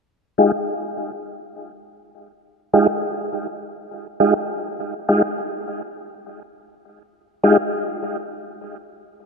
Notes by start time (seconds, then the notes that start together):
0.38 G#3 D#4 F4 G4
2.73 G#3 D#4 F4 G4
4.20 G#3 D#4 F4 G4
5.09 G#3 D#4 F4 G4
7.43 G#3 D#4 F4 G4